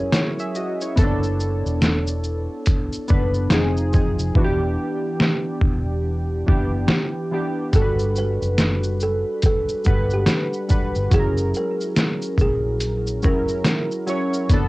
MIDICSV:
0, 0, Header, 1, 5, 480
1, 0, Start_track
1, 0, Tempo, 845070
1, 554, Time_signature, 4, 2, 24, 8
1, 8340, End_track
2, 0, Start_track
2, 0, Title_t, "Kalimba"
2, 0, Program_c, 0, 108
2, 4408, Note_on_c, 0, 69, 85
2, 4641, Note_off_c, 0, 69, 0
2, 4648, Note_on_c, 0, 71, 75
2, 5099, Note_off_c, 0, 71, 0
2, 5128, Note_on_c, 0, 69, 77
2, 5339, Note_off_c, 0, 69, 0
2, 5372, Note_on_c, 0, 69, 81
2, 5728, Note_off_c, 0, 69, 0
2, 5757, Note_on_c, 0, 67, 68
2, 6299, Note_off_c, 0, 67, 0
2, 6329, Note_on_c, 0, 68, 98
2, 6562, Note_off_c, 0, 68, 0
2, 6570, Note_on_c, 0, 70, 77
2, 7019, Note_off_c, 0, 70, 0
2, 7050, Note_on_c, 0, 68, 85
2, 7259, Note_off_c, 0, 68, 0
2, 7528, Note_on_c, 0, 70, 74
2, 7655, Note_off_c, 0, 70, 0
2, 8340, End_track
3, 0, Start_track
3, 0, Title_t, "Synth keys"
3, 0, Program_c, 1, 88
3, 0, Control_c, 1, 64, 127
3, 0, Note_on_c, 1, 54, 65
3, 0, Note_on_c, 1, 61, 64
3, 0, Note_on_c, 1, 64, 61
3, 0, Note_on_c, 1, 68, 77
3, 75, Note_off_c, 1, 64, 0
3, 78, Note_on_c, 1, 73, 60
3, 80, Note_off_c, 1, 68, 0
3, 82, Note_on_c, 1, 64, 52
3, 217, Note_off_c, 1, 73, 0
3, 218, Note_off_c, 1, 64, 0
3, 225, Note_on_c, 1, 76, 67
3, 229, Note_on_c, 1, 68, 57
3, 280, Note_off_c, 1, 54, 0
3, 282, Note_off_c, 1, 61, 0
3, 312, Note_off_c, 1, 76, 0
3, 313, Note_off_c, 1, 68, 0
3, 318, Note_on_c, 1, 75, 70
3, 321, Note_on_c, 1, 66, 52
3, 456, Note_off_c, 1, 75, 0
3, 458, Note_off_c, 1, 66, 0
3, 464, Note_on_c, 1, 73, 57
3, 468, Note_on_c, 1, 64, 53
3, 544, Note_on_c, 1, 59, 81
3, 552, Note_on_c, 1, 60, 63
3, 559, Note_on_c, 1, 69, 97
3, 560, Control_c, 1, 64, 0
3, 589, Note_on_c, 1, 62, 85
3, 599, Note_off_c, 1, 60, 0
3, 650, Control_c, 1, 64, 127
3, 691, Note_off_c, 1, 73, 0
3, 693, Note_off_c, 1, 64, 0
3, 1445, Note_off_c, 1, 59, 0
3, 1452, Note_off_c, 1, 69, 0
3, 1467, Note_off_c, 1, 62, 0
3, 1749, Note_on_c, 1, 59, 85
3, 1757, Note_on_c, 1, 62, 80
3, 1764, Note_on_c, 1, 71, 84
3, 1989, Note_on_c, 1, 53, 89
3, 1992, Note_off_c, 1, 59, 0
3, 1995, Note_on_c, 1, 60, 82
3, 1996, Note_off_c, 1, 62, 0
3, 1999, Note_off_c, 1, 71, 0
3, 1999, Note_on_c, 1, 63, 77
3, 2002, Control_c, 1, 64, 0
3, 2004, Note_on_c, 1, 68, 92
3, 2115, Control_c, 1, 64, 127
3, 2216, Note_off_c, 1, 53, 0
3, 2218, Note_off_c, 1, 60, 0
3, 2221, Note_off_c, 1, 63, 0
3, 2223, Note_off_c, 1, 68, 0
3, 2229, Note_on_c, 1, 53, 77
3, 2233, Note_on_c, 1, 60, 71
3, 2239, Note_on_c, 1, 63, 66
3, 2244, Note_on_c, 1, 68, 79
3, 2455, Note_off_c, 1, 53, 0
3, 2458, Note_off_c, 1, 60, 0
3, 2461, Note_off_c, 1, 63, 0
3, 2463, Note_off_c, 1, 68, 0
3, 2472, Note_on_c, 1, 52, 90
3, 2478, Note_on_c, 1, 59, 82
3, 2481, Control_c, 1, 64, 0
3, 2482, Note_on_c, 1, 62, 80
3, 2488, Note_on_c, 1, 66, 73
3, 2524, Note_on_c, 1, 67, 100
3, 2526, Note_off_c, 1, 66, 0
3, 2571, Control_c, 1, 64, 127
3, 3369, Note_off_c, 1, 52, 0
3, 3371, Note_off_c, 1, 59, 0
3, 3374, Note_off_c, 1, 62, 0
3, 3395, Note_off_c, 1, 67, 0
3, 3672, Note_on_c, 1, 52, 78
3, 3677, Note_on_c, 1, 59, 75
3, 3681, Note_on_c, 1, 62, 66
3, 3687, Note_on_c, 1, 67, 87
3, 4121, Note_off_c, 1, 52, 0
3, 4123, Note_off_c, 1, 59, 0
3, 4125, Note_off_c, 1, 62, 0
3, 4128, Note_off_c, 1, 67, 0
3, 4154, Note_on_c, 1, 52, 75
3, 4159, Note_on_c, 1, 59, 69
3, 4165, Note_on_c, 1, 62, 64
3, 4168, Note_on_c, 1, 67, 83
3, 4378, Note_off_c, 1, 52, 0
3, 4381, Note_off_c, 1, 59, 0
3, 4383, Note_off_c, 1, 62, 0
3, 4385, Note_off_c, 1, 67, 0
3, 4388, Note_on_c, 1, 55, 69
3, 4394, Note_on_c, 1, 62, 64
3, 4399, Note_on_c, 1, 66, 67
3, 4402, Control_c, 1, 64, 0
3, 4404, Note_on_c, 1, 69, 68
3, 4441, Note_on_c, 1, 71, 75
3, 4445, Note_off_c, 1, 69, 0
3, 4515, Control_c, 1, 64, 127
3, 5287, Note_off_c, 1, 55, 0
3, 5290, Note_off_c, 1, 62, 0
3, 5292, Note_off_c, 1, 66, 0
3, 5313, Note_off_c, 1, 71, 0
3, 5594, Note_on_c, 1, 55, 70
3, 5601, Note_on_c, 1, 62, 60
3, 5605, Note_on_c, 1, 78, 58
3, 5610, Note_on_c, 1, 71, 81
3, 6042, Note_off_c, 1, 55, 0
3, 6045, Note_off_c, 1, 62, 0
3, 6047, Note_off_c, 1, 78, 0
3, 6050, Note_off_c, 1, 71, 0
3, 6069, Note_on_c, 1, 55, 64
3, 6074, Note_on_c, 1, 62, 62
3, 6079, Note_on_c, 1, 78, 59
3, 6085, Note_on_c, 1, 71, 75
3, 6296, Note_off_c, 1, 55, 0
3, 6298, Note_off_c, 1, 62, 0
3, 6301, Note_off_c, 1, 78, 0
3, 6303, Note_off_c, 1, 71, 0
3, 6307, Note_on_c, 1, 54, 77
3, 6311, Note_on_c, 1, 61, 67
3, 6317, Note_on_c, 1, 64, 64
3, 6322, Note_on_c, 1, 68, 64
3, 6323, Control_c, 1, 64, 0
3, 6358, Note_on_c, 1, 70, 80
3, 6364, Note_off_c, 1, 68, 0
3, 6416, Control_c, 1, 64, 127
3, 7206, Note_off_c, 1, 54, 0
3, 7208, Note_off_c, 1, 61, 0
3, 7211, Note_off_c, 1, 64, 0
3, 7232, Note_off_c, 1, 70, 0
3, 7514, Note_on_c, 1, 54, 76
3, 7519, Note_on_c, 1, 61, 66
3, 7524, Note_on_c, 1, 64, 65
3, 7529, Note_on_c, 1, 70, 75
3, 7962, Note_off_c, 1, 54, 0
3, 7964, Note_off_c, 1, 61, 0
3, 7967, Note_off_c, 1, 64, 0
3, 7969, Note_off_c, 1, 70, 0
3, 7990, Note_on_c, 1, 54, 84
3, 7995, Note_on_c, 1, 61, 75
3, 8001, Note_on_c, 1, 64, 65
3, 8006, Note_on_c, 1, 73, 90
3, 8216, Note_off_c, 1, 54, 0
3, 8219, Note_off_c, 1, 61, 0
3, 8221, Note_off_c, 1, 64, 0
3, 8224, Note_off_c, 1, 73, 0
3, 8240, Note_on_c, 1, 59, 94
3, 8241, Control_c, 1, 64, 0
3, 8246, Note_on_c, 1, 62, 77
3, 8255, Note_on_c, 1, 69, 85
3, 8324, Control_c, 1, 64, 127
3, 8340, Note_off_c, 1, 59, 0
3, 8340, Note_off_c, 1, 62, 0
3, 8340, Note_off_c, 1, 69, 0
3, 8340, End_track
4, 0, Start_track
4, 0, Title_t, "Fingered electric bass"
4, 0, Program_c, 2, 33
4, 0, Note_on_c, 2, 30, 86
4, 65, Note_off_c, 2, 30, 0
4, 553, Note_on_c, 2, 30, 102
4, 919, Note_off_c, 2, 30, 0
4, 943, Note_on_c, 2, 28, 81
4, 1400, Note_off_c, 2, 28, 0
4, 1763, Note_on_c, 2, 30, 104
4, 1985, Note_off_c, 2, 30, 0
4, 1995, Note_on_c, 2, 29, 101
4, 2360, Note_off_c, 2, 29, 0
4, 2383, Note_on_c, 2, 29, 83
4, 2469, Note_off_c, 2, 29, 0
4, 2473, Note_on_c, 2, 28, 97
4, 2700, Note_off_c, 2, 28, 0
4, 3189, Note_on_c, 2, 28, 84
4, 3649, Note_off_c, 2, 28, 0
4, 3683, Note_on_c, 2, 30, 91
4, 3905, Note_off_c, 2, 30, 0
4, 4393, Note_on_c, 2, 31, 90
4, 4759, Note_off_c, 2, 31, 0
4, 4783, Note_on_c, 2, 30, 82
4, 5240, Note_off_c, 2, 30, 0
4, 5604, Note_on_c, 2, 31, 91
4, 5826, Note_off_c, 2, 31, 0
4, 6224, Note_on_c, 2, 31, 85
4, 6310, Note_off_c, 2, 31, 0
4, 6314, Note_on_c, 2, 30, 90
4, 6540, Note_off_c, 2, 30, 0
4, 7030, Note_on_c, 2, 34, 81
4, 7524, Note_off_c, 2, 34, 0
4, 7524, Note_on_c, 2, 30, 90
4, 7746, Note_off_c, 2, 30, 0
4, 8234, Note_on_c, 2, 30, 97
4, 8340, Note_off_c, 2, 30, 0
4, 8340, End_track
5, 0, Start_track
5, 0, Title_t, "Drums"
5, 70, Note_on_c, 9, 38, 106
5, 75, Note_on_c, 9, 42, 63
5, 75, Note_on_c, 9, 82, 61
5, 127, Note_off_c, 9, 38, 0
5, 132, Note_off_c, 9, 42, 0
5, 132, Note_off_c, 9, 82, 0
5, 221, Note_on_c, 9, 82, 41
5, 278, Note_off_c, 9, 82, 0
5, 312, Note_on_c, 9, 82, 51
5, 369, Note_off_c, 9, 82, 0
5, 458, Note_on_c, 9, 82, 52
5, 515, Note_off_c, 9, 82, 0
5, 551, Note_on_c, 9, 42, 55
5, 551, Note_on_c, 9, 82, 57
5, 552, Note_on_c, 9, 36, 107
5, 608, Note_off_c, 9, 42, 0
5, 608, Note_off_c, 9, 82, 0
5, 609, Note_off_c, 9, 36, 0
5, 699, Note_on_c, 9, 82, 45
5, 756, Note_off_c, 9, 82, 0
5, 794, Note_on_c, 9, 82, 45
5, 851, Note_off_c, 9, 82, 0
5, 944, Note_on_c, 9, 82, 42
5, 1001, Note_off_c, 9, 82, 0
5, 1033, Note_on_c, 9, 38, 104
5, 1033, Note_on_c, 9, 42, 60
5, 1033, Note_on_c, 9, 82, 54
5, 1089, Note_off_c, 9, 42, 0
5, 1089, Note_off_c, 9, 82, 0
5, 1090, Note_off_c, 9, 38, 0
5, 1176, Note_on_c, 9, 82, 52
5, 1233, Note_off_c, 9, 82, 0
5, 1271, Note_on_c, 9, 82, 48
5, 1328, Note_off_c, 9, 82, 0
5, 1510, Note_on_c, 9, 42, 58
5, 1510, Note_on_c, 9, 82, 60
5, 1517, Note_on_c, 9, 36, 84
5, 1567, Note_off_c, 9, 42, 0
5, 1567, Note_off_c, 9, 82, 0
5, 1574, Note_off_c, 9, 36, 0
5, 1662, Note_on_c, 9, 82, 46
5, 1718, Note_off_c, 9, 82, 0
5, 1750, Note_on_c, 9, 82, 47
5, 1762, Note_on_c, 9, 36, 80
5, 1807, Note_off_c, 9, 82, 0
5, 1819, Note_off_c, 9, 36, 0
5, 1897, Note_on_c, 9, 82, 39
5, 1954, Note_off_c, 9, 82, 0
5, 1989, Note_on_c, 9, 38, 106
5, 1995, Note_on_c, 9, 42, 60
5, 1995, Note_on_c, 9, 82, 62
5, 2046, Note_off_c, 9, 38, 0
5, 2052, Note_off_c, 9, 42, 0
5, 2052, Note_off_c, 9, 82, 0
5, 2141, Note_on_c, 9, 82, 42
5, 2198, Note_off_c, 9, 82, 0
5, 2233, Note_on_c, 9, 82, 50
5, 2238, Note_on_c, 9, 36, 91
5, 2289, Note_off_c, 9, 82, 0
5, 2295, Note_off_c, 9, 36, 0
5, 2379, Note_on_c, 9, 82, 50
5, 2436, Note_off_c, 9, 82, 0
5, 2472, Note_on_c, 9, 36, 111
5, 2529, Note_off_c, 9, 36, 0
5, 2953, Note_on_c, 9, 38, 107
5, 3010, Note_off_c, 9, 38, 0
5, 3188, Note_on_c, 9, 36, 80
5, 3245, Note_off_c, 9, 36, 0
5, 3682, Note_on_c, 9, 36, 82
5, 3739, Note_off_c, 9, 36, 0
5, 3909, Note_on_c, 9, 38, 109
5, 3965, Note_off_c, 9, 38, 0
5, 4391, Note_on_c, 9, 42, 55
5, 4391, Note_on_c, 9, 82, 56
5, 4392, Note_on_c, 9, 36, 106
5, 4448, Note_off_c, 9, 42, 0
5, 4448, Note_off_c, 9, 82, 0
5, 4449, Note_off_c, 9, 36, 0
5, 4539, Note_on_c, 9, 82, 43
5, 4596, Note_off_c, 9, 82, 0
5, 4634, Note_on_c, 9, 82, 48
5, 4691, Note_off_c, 9, 82, 0
5, 4784, Note_on_c, 9, 82, 43
5, 4841, Note_off_c, 9, 82, 0
5, 4873, Note_on_c, 9, 42, 57
5, 4873, Note_on_c, 9, 82, 55
5, 4874, Note_on_c, 9, 38, 101
5, 4930, Note_off_c, 9, 42, 0
5, 4930, Note_off_c, 9, 82, 0
5, 4931, Note_off_c, 9, 38, 0
5, 5017, Note_on_c, 9, 82, 50
5, 5074, Note_off_c, 9, 82, 0
5, 5113, Note_on_c, 9, 82, 49
5, 5169, Note_off_c, 9, 82, 0
5, 5352, Note_on_c, 9, 42, 59
5, 5352, Note_on_c, 9, 82, 57
5, 5358, Note_on_c, 9, 36, 88
5, 5409, Note_off_c, 9, 42, 0
5, 5409, Note_off_c, 9, 82, 0
5, 5415, Note_off_c, 9, 36, 0
5, 5502, Note_on_c, 9, 82, 47
5, 5559, Note_off_c, 9, 82, 0
5, 5590, Note_on_c, 9, 82, 49
5, 5603, Note_on_c, 9, 36, 80
5, 5647, Note_off_c, 9, 82, 0
5, 5660, Note_off_c, 9, 36, 0
5, 5738, Note_on_c, 9, 82, 40
5, 5795, Note_off_c, 9, 82, 0
5, 5830, Note_on_c, 9, 38, 108
5, 5836, Note_on_c, 9, 42, 62
5, 5836, Note_on_c, 9, 82, 59
5, 5887, Note_off_c, 9, 38, 0
5, 5892, Note_off_c, 9, 42, 0
5, 5892, Note_off_c, 9, 82, 0
5, 5983, Note_on_c, 9, 82, 39
5, 6039, Note_off_c, 9, 82, 0
5, 6073, Note_on_c, 9, 82, 55
5, 6079, Note_on_c, 9, 36, 88
5, 6130, Note_off_c, 9, 82, 0
5, 6136, Note_off_c, 9, 36, 0
5, 6220, Note_on_c, 9, 82, 51
5, 6277, Note_off_c, 9, 82, 0
5, 6313, Note_on_c, 9, 36, 111
5, 6313, Note_on_c, 9, 42, 55
5, 6313, Note_on_c, 9, 82, 54
5, 6369, Note_off_c, 9, 42, 0
5, 6369, Note_off_c, 9, 82, 0
5, 6370, Note_off_c, 9, 36, 0
5, 6460, Note_on_c, 9, 82, 45
5, 6517, Note_off_c, 9, 82, 0
5, 6556, Note_on_c, 9, 82, 48
5, 6612, Note_off_c, 9, 82, 0
5, 6706, Note_on_c, 9, 82, 42
5, 6762, Note_off_c, 9, 82, 0
5, 6795, Note_on_c, 9, 38, 107
5, 6795, Note_on_c, 9, 42, 58
5, 6795, Note_on_c, 9, 82, 57
5, 6852, Note_off_c, 9, 38, 0
5, 6852, Note_off_c, 9, 42, 0
5, 6852, Note_off_c, 9, 82, 0
5, 6940, Note_on_c, 9, 82, 51
5, 6996, Note_off_c, 9, 82, 0
5, 7030, Note_on_c, 9, 36, 84
5, 7034, Note_on_c, 9, 82, 45
5, 7086, Note_off_c, 9, 36, 0
5, 7090, Note_off_c, 9, 82, 0
5, 7272, Note_on_c, 9, 42, 56
5, 7272, Note_on_c, 9, 82, 56
5, 7329, Note_off_c, 9, 42, 0
5, 7329, Note_off_c, 9, 82, 0
5, 7423, Note_on_c, 9, 82, 48
5, 7480, Note_off_c, 9, 82, 0
5, 7512, Note_on_c, 9, 82, 48
5, 7524, Note_on_c, 9, 36, 78
5, 7569, Note_off_c, 9, 82, 0
5, 7580, Note_off_c, 9, 36, 0
5, 7659, Note_on_c, 9, 82, 39
5, 7716, Note_off_c, 9, 82, 0
5, 7751, Note_on_c, 9, 38, 103
5, 7756, Note_on_c, 9, 42, 60
5, 7756, Note_on_c, 9, 82, 63
5, 7808, Note_off_c, 9, 38, 0
5, 7813, Note_off_c, 9, 42, 0
5, 7813, Note_off_c, 9, 82, 0
5, 7903, Note_on_c, 9, 82, 41
5, 7960, Note_off_c, 9, 82, 0
5, 7994, Note_on_c, 9, 82, 55
5, 8051, Note_off_c, 9, 82, 0
5, 8142, Note_on_c, 9, 82, 50
5, 8199, Note_off_c, 9, 82, 0
5, 8233, Note_on_c, 9, 42, 58
5, 8233, Note_on_c, 9, 82, 60
5, 8234, Note_on_c, 9, 36, 105
5, 8290, Note_off_c, 9, 42, 0
5, 8290, Note_off_c, 9, 82, 0
5, 8291, Note_off_c, 9, 36, 0
5, 8340, End_track
0, 0, End_of_file